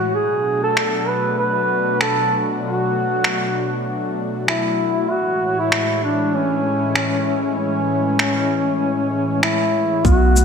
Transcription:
Already playing: A2 E3 G#3 F#4 C#5
0.15 B2 F#3 A3 D4 F#4 G#4
0.64 A4
0.77 finger snap
1.08 B4
1.38 B4
2.00 A4, finger snap
2.63 F#4
3.24 finger snap
4.48 E4, finger snap
5.10 A2 E3 G#3 E4 F#4 C#5
5.60 E4
5.72 finger snap
6.04 D4
6.35 C#4
6.96 finger snap
7.58 C#4
8.19 finger snap
9.42 E4, finger snap
10.05 B1 D3 F#3 A3 B3 F#4, kick, shaker
10.36 A3, shaker

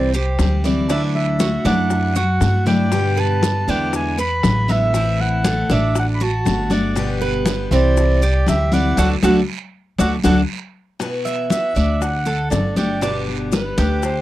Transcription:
Already playing: C2 E3 G3 C4 E4 D5
0.12 G4 C5, muted steel-string acoustic guitar stroke, high conga, maracas
0.39 D2 E3 G3 C4 E4, high bongo, low bongo, high conga, short guiro, maracas
0.64 E3 G3 C4 E4 D5, high conga, short guiro, maracas
0.89 D3 F#3 A3 D4 E4 E5, high bongo, high conga, long guiro, maracas
1.15 E5, high bongo, high conga
1.40 F#3 A3 D4 E4 F#4, high bongo, high conga, short guiro, maracas
1.65 F#2 F#3 A3 D4 E4 F#5, high bongo, high conga, short guiro, maracas
1.90 high bongo, high conga, long guiro, maracas
2.15 F#4 F#5, muted steel-string acoustic guitar stroke, high conga, maracas
2.40 G2 F#3 A3 D4 E4, high bongo, low bongo, short guiro, maracas
2.66 F#3 A3 D4 E4 D5 G5, high bongo, low conga, short guiro, maracas
2.92 B2 D3 G3 B3 G4, high bongo, high conga, long guiro, maracas
3.17 B4 A5, high conga
3.42 D3 G3 B3 G4, high bongo, high conga, short guiro, maracas
3.67 E2 D3 G#3 B3 D4 E4 G5, high conga, short guiro, maracas
3.93 G#5, high bongo, high conga, long guiro, maracas
4.18 B4 B5, muted steel-string acoustic guitar stroke, high conga, maracas
4.43 A1 D3 G#3 B3 E4, high bongo, low bongo, high conga, short guiro, maracas
4.68 D3 G#3 B3 E4 E5, high conga, short guiro, maracas
4.94 E3 A3 C4 E4, high bongo, high conga, long guiro, maracas
5.20 F#5, high bongo, high conga
5.44 E3 A3 C4 E4 A4, high bongo, high conga, short guiro, maracas
5.70 A1 A3 D4 F#4 E5, high bongo, high conga, short guiro, maracas
5.95 F#5, high bongo, high conga, long guiro, maracas
6.15 B5
6.20 F#4 A5, muted steel-string acoustic guitar stroke, high conga
6.45 G1 D3 A3 D4 F#4, high bongo, low bongo, high conga, short guiro, maracas
6.70 A3 D4 F#4 D5, high bongo, high conga, short guiro, maracas
6.95 B2 D3 G3 B3 G4, high bongo, high conga, long guiro, maracas
7.21 B4, high conga
7.46 D3 G3 B3 G4, high bongo, high conga, short guiro, maracas
7.71 C2 E3 G3 C4 E4, high conga, short guiro, maracas
7.75 D5
7.96 high bongo, high conga, long guiro, maracas
8.22 G4, muted steel-string acoustic guitar stroke, high conga, maracas
8.47 D2 E3 G3 C4 E4 E5, high bongo, low bongo, high conga, short guiro, maracas
8.72 E3 G3 C4 E4 D5 F#5, high conga, short guiro, maracas
8.97 D2 F#3 A3 D4 F#4 A4 F#5, high bongo, high conga, long guiro, maracas
9.23 D2 F#3 A3 D4 F#4 A4 F#5, high bongo, high conga, long guiro, maracas
9.98 D2 F#3 A3 D4 F#4 A4 F#5, high bongo, high conga, long guiro, maracas
10.23 D2 F#3 A3 D4 F#4 A4 F#5, high bongo, high conga, long guiro, maracas
10.99 B2 E3 B3 E4 F#4, high bongo, high conga, long guiro, maracas
11.25 E5, high conga, maracas
11.50 E3 B3 E4 F#4 E5, high bongo, high conga, short guiro, maracas
11.75 D2 A3 D4 F#4 D5, high conga, short guiro, maracas
12.01 F#5, high bongo, high conga, long guiro, maracas
12.25 A4, muted steel-string acoustic guitar stroke, high conga
12.50 G1 D3 A3 D4 F#4 D5, high bongo, low bongo, high conga, short guiro, maracas
12.76 A3 D4 F#4 G4 D5, high conga, short guiro, maracas
13.01 B2 D3 G3 B3 D4 G4, high bongo, high conga, long guiro, maracas
13.27 high bongo, high conga
13.52 D3 G3 B3 G4 B4, high bongo, high conga, short guiro, maracas
13.78 D2 A3 D4 G4, high bongo, high conga, short guiro, maracas
14.02 C5, high bongo, high conga, long guiro, maracas

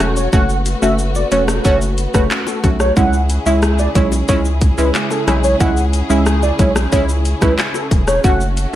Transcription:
Already playing: A3 C#4 F#4, impact
0.00 E1 A3 C#4 F#4, cross-stick, closed hi-hat, low bongo, shaker
0.16 C#5, shaker
0.33 F#1 A3 B3 C#4 F#4 F#5, kick, shaker
0.49 shaker
0.66 closed hi-hat, shaker
0.82 F#1 A3 C#4 F#4 E5, shaker
0.99 shaker
1.15 D5, high bongo, shaker
1.31 E1 A3 C#4 F#4 C#5, closed hi-hat, low bongo, shaker
1.48 cross-stick, high bongo, shaker
1.64 F#1 A3 C#4 F#4 C#5, kick, shaker
1.81 shaker
1.98 closed hi-hat, shaker
2.14 F#1 A3 C#4 F#4 B4, kick, cross-stick, shaker
2.31 clap, high bongo, shaker
2.47 A4, high bongo, shaker
2.63 B1 A3 C#4 F#4, kick, closed hi-hat, low bongo, shaker
2.80 C#5, cross-stick, shaker
2.96 C#2 C#3 G#3 C#4 E4 G#4 F#5, kick, shaker
3.13 shaker
3.30 closed hi-hat, shaker
3.46 C#2 G#3 C#4 E4 E5, shaker
3.62 cross-stick, shaker
3.79 D5, high bongo, shaker
3.95 B1 G#3 C#4 E4 C#5, kick, closed hi-hat, low bongo, shaker
4.12 high bongo, shaker
4.28 C#2 G#3 C#4 E4 C#5, kick, shaker
4.45 shaker
4.61 kick, closed hi-hat, shaker
4.78 C#2 G#3 C#4 E4 B4, shaker
4.94 clap, high bongo, shaker
5.10 A4, high bongo, shaker
5.27 B1 G#3 C#4 E4, cross-stick, closed hi-hat, low bongo, shaker
5.44 C#5, shaker
5.60 C#2 G#3 C#4 E4 F#5, kick, shaker
5.77 shaker
5.93 closed hi-hat, shaker
6.10 C#2 G#3 C#4 E4 E5, shaker
6.26 cross-stick, shaker
6.43 D5, high bongo, shaker
6.59 B1 G#3 C#4 E4 C#5, kick, closed hi-hat, low bongo, shaker
6.76 cross-stick, high bongo, shaker
6.92 C#2 G#3 C#4 E4 C#5, kick, shaker
7.09 shaker
7.25 closed hi-hat, shaker
7.42 C#2 G#3 C#4 E4 B4, kick, cross-stick, shaker
7.58 clap, high bongo, shaker
7.74 A4, high bongo, shaker
7.91 E1, kick, closed hi-hat, low bongo, shaker
8.08 C#5, cross-stick, shaker
8.24 F#1 A3 C#4 F#4 F#5, kick, shaker
8.41 shaker
8.57 closed hi-hat, shaker

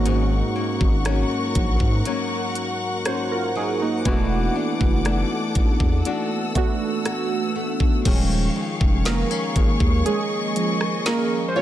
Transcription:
Already playing: G#1 A#3 C#4 D#4 F#4 A#4 F#5 C#6
0.06 G#2, closed hi-hat
0.56 A#3
0.81 G#1, kick
1.05 F#3 A#3 C#4, cross-stick, closed hi-hat
1.55 A#1, kick, closed hi-hat
1.80 G#2, kick
2.05 F#3 A#3 C#4, closed hi-hat
2.55 closed hi-hat
3.05 C#4 F#4 C5, cross-stick, closed hi-hat
3.32 F4 A#4
3.55 F#3 D#4 G#4
3.82 A#3 D#4
4.05 E1 E3 G#3 B3 D4 F#4 A4 D6, kick, closed hi-hat
4.12 A3
4.55 D4
4.81 F#1, kick
5.05 A3 D4 F#4, cross-stick, closed hi-hat
5.55 A1, kick, closed hi-hat
5.80 E2, kick
6.05 A3 D4 F#4 E6, closed hi-hat
6.55 A3 B3 D4 F#4, kick, closed hi-hat
7.05 F#4, cross-stick, closed hi-hat
7.56 A3
7.80 kick
8.05 D#1 D#3 F3 G#3 C#4 G#4 F5 C#6, kick, closed hi-hat, crash
8.56 G#3
8.81 F1, kick
9.05 A#3 B3 A#4, snare, closed hi-hat
9.31 C#4
9.56 G#1 G#3, kick, closed hi-hat
9.80 D#2, kick
10.06 G#3 C#4 G#4 D#5, closed hi-hat
10.56 F3 G#3 C#4, closed hi-hat
10.81 cross-stick
11.06 G#3 A#3 A#4, snare, closed hi-hat
11.48 C5
11.56 C#4 F4 C#5

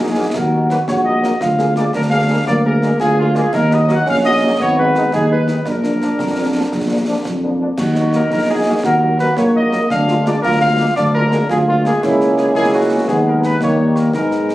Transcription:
Already playing: A#1 D#4
0.00 G#4
0.16 F#3 A#3 D#4 F#4
0.34 D#2 F#4 A#4, concert bass drum, snare
0.53 A#3 D#4 F#4
0.69 F#3 A#3 D#4 F#4 B4, snare
0.87 A#1 F#4 C#5, concert bass drum, snare
1.05 A#3 D#4 F#4 D#5
1.22 F#3 A#3 D#4 F#4, snare
1.41 D2 F4 F5, concert bass drum, snare
1.58 A#3 G#4, snare
1.76 G#3 A#3 G#4 D5, snare
1.93 D2 D4 A#4, concert bass drum, snare
2.10 A#3 G#4 F5
2.29 G#3 A#3 G#4
2.46 D2 A#3 D5, concert bass drum, snare
2.64 A#3 G#4 A#4
2.82 G#3 A#3 G#4, snare
3.00 D2 F4 G#4, concert bass drum, snare
3.17 A#3 F4 G#4
3.35 G#3 A#3 G#4, snare
3.53 D#2 D#4 A#4, concert bass drum, snare, crash
3.71 A#3 D#4 F#4 D#5, snare
3.87 F#3 A#3 D#4 F#4 F#5, snare
4.06 A#1 C#4 F5, concert bass drum, snare
4.24 A#3 D#4 F#4 D#5
4.43 F#3 A#3 D#4 F#4
4.60 G#1 B3 C#5, concert bass drum, snare
4.78 G#3 D#4 B4
4.95 D#3 G#3 D#4, snare
5.12 D#2 D#4 G#4, concert bass drum, snare
5.31 G#3 D#4 B4
5.47 D#3 G#3 D#4, snare
5.66 A#1 D4 A#4, concert bass drum, snare
5.83 F3 A#3 D4, snare
6.00 F3 A#3 D4, snare
6.19 F2, concert bass drum, snare
6.36 F3 A#3 D4
6.53 F3 A#3 D4
6.72 A#1, concert bass drum, snare
6.89 F3 A#3 D4
7.07 F3 A#3 D4
7.25 F2, concert bass drum, snare
7.42 F3 A#3 D4
7.59 F3 A#3 D4
7.77 D#2 D#4 F#4, concert bass drum, snare, crash
7.95 F#3 A#3 D#4, snare
8.13 F#3 A#3 D#4 A#4, snare
8.31 A#1 A#4, concert bass drum, snare
8.49 F#3 A#3 D#4 G#4
8.65 F#3 A#3 D#4
8.84 D#2 F#4 A#4, concert bass drum, snare
9.02 F#3 A#3 D#4
9.18 F#3 A#3 D#4 B4, snare
9.37 A#1 A#3 C#5, concert bass drum, snare
9.55 F#3 A#3 D#4 D#5
9.70 F#3 A#3 D#4, snare
9.90 D2 D4 F5, concert bass drum, snare
10.08 G#3 A#3 F4, snare
10.24 G#3 A#3 F4 D5, snare
10.42 D2 F4 A#4, concert bass drum, snare
10.61 G#3 A#3 F4 F5
10.78 G#3 A#3 F4
10.96 D2 D4 D5, concert bass drum, snare
11.14 G#3 A#3 F4 A#4
11.30 G#3 A#3 F4, snare
11.49 D2 F4 G#4, concert bass drum, snare
11.66 G#3 A#3 F4
11.83 G#3 A#3 F4 G#4, snare
12.00 C#2 G#3 A#3 E4, concert bass drum, snare, crash
12.04 C#4
12.21 snare
12.38 G#4, snare
12.54 C#2 G#3 A#3 E4 G#4, concert bass drum, snare
12.73 F#4
13.07 D#2 G#3 B3 D#4 G#4, concert bass drum, snare
13.27 A#4
13.43 B4, snare
13.60 D#2 G3 A#3 D#4 C#5, concert bass drum, snare
13.96 A#4, snare
14.13 G#2 G#3 B3 D#4 A#4, concert bass drum, snare
14.31 snare
14.49 snare

